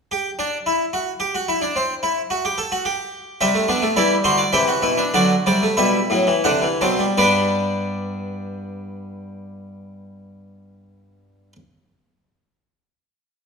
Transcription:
0.11 0.29 G4 medium
0.39 0.56 D4 loud
0.66 0.84 E4 medium
0.93 1.11 F#4 medium
1.20 1.34 G4 loud
1.35 1.48 F#4 medium
1.49 1.62 E4 medium
1.62 1.75 D4 medium
1.76 1.93 C4 medium
2.03 2.20 E4 medium
2.30 2.44 F#4 medium
2.45 2.58 G4 medium
2.58 2.71 A4 loud
2.72 2.85 F#4 loud
2.85 3.39 G4 loud
3.41 3.95 C3 medium
3.41 3.54 G3 medium
3.41 3.58 G4 medium
3.41 3.95 E5 medium
3.55 3.68 A3 medium
3.68 3.82 B3 medium
3.68 3.86 D4 medium
3.82 3.96 A3 medium
3.96 4.14 E3 medium
3.96 4.52 G3 medium
3.96 4.14 E4 loud
3.96 4.14 D5 medium
4.24 4.42 D3 medium
4.24 4.43 F#4 medium
4.24 4.39 C5 medium
4.37 4.52 D5 medium
4.53 4.72 C3 medium
4.53 5.12 E3 medium
4.53 4.68 G4 loud
4.53 5.12 E5 medium
4.68 4.83 F#4 medium
4.82 5.02 B2 medium
4.82 4.98 E4 medium
4.97 5.13 D4 medium
5.14 5.33 D3 medium
5.14 5.34 F#3 medium
5.14 5.76 F#4 medium
5.14 5.34 D5 medium
5.46 5.66 C3 medium
5.46 5.61 G3 medium
5.46 5.66 D5 medium
5.63 5.78 A3 medium
5.77 5.98 B2 medium
5.77 5.98 G3 medium
5.77 6.43 E4 medium
5.77 6.43 E5 medium
6.10 6.32 A2 medium
6.10 6.27 F#3 medium
6.27 6.44 E3 medium
6.44 6.67 C3 medium
6.44 6.62 D3 medium
6.44 6.67 D4 medium
6.44 6.67 F#5 medium
6.62 6.80 E3 medium
6.81 7.04 B2 medium
6.81 6.99 F#3 medium
6.81 7.04 C4 medium
6.81 7.04 A5 medium
6.99 7.17 G3 medium
7.17 11.53 G2 medium
7.17 11.56 G3 medium
7.17 11.53 B3 medium
7.17 11.53 D4 medium
7.17 11.56 G4 medium
7.17 11.53 D5 medium

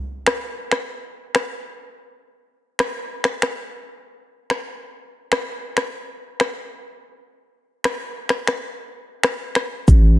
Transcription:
0.26 finger snap medium
0.26 cross-stick loud
0.71 finger snap medium
0.71 cross-stick medium
1.35 finger snap medium
1.35 cross-stick medium
2.79 finger snap medium
2.79 cross-stick loud
3.24 finger snap medium
3.24 cross-stick medium
3.42 finger snap medium
3.42 cross-stick medium
4.50 finger snap medium
4.50 cross-stick medium
5.32 finger snap medium
5.32 cross-stick loud
5.77 finger snap medium
5.77 cross-stick medium
6.40 finger snap medium
6.40 cross-stick medium
7.84 finger snap medium
7.84 cross-stick loud
8.29 finger snap medium
8.29 cross-stick medium
8.47 finger snap medium
8.47 cross-stick medium
9.23 finger snap medium
9.23 cross-stick medium
9.55 finger snap medium
9.55 cross-stick medium
9.88 10.19 A1 loud
9.88 kick loud
9.88 shaker medium

